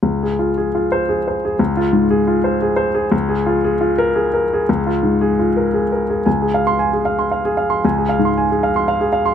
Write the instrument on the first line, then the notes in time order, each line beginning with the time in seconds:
grand piano
0.03 C#2
0.23 G#4
0.39 F4
0.57 G#4
0.75 F4
0.92 C5
1.09 G#4
1.28 C5
1.45 G#4
1.59 C#2
1.77 F4
1.93 G#2
2.11 G#4
2.27 F4
2.44 C5
2.62 G#4
2.76 C5
2.94 G#4
3.12 C#2
3.29 G#4
3.46 F4
3.64 G#4
3.81 F4
3.98 A#4
4.15 G#4
4.34 A#4
4.53 G#4
4.69 C#2
4.87 F4
5.03 G#2
5.21 G#4
5.39 F4
5.57 A#4
5.74 G#4
5.92 A#4
6.10 G#4
6.26 C#2 G#5
6.42 G#4
6.54 F5
6.67 C6
6.79 G#5
6.93 G#4
7.05 F5
7.19 C6
7.31 F5
7.45 G#4
7.57 F5
7.70 C6
7.85 C#2 G#5
7.98 G#4
8.09 F5
8.19 G#2
8.25 C6
8.37 G#5
8.51 G#4
8.63 F5
8.76 C6
8.88 F5
9.01 G#4
9.13 F5
9.26 C6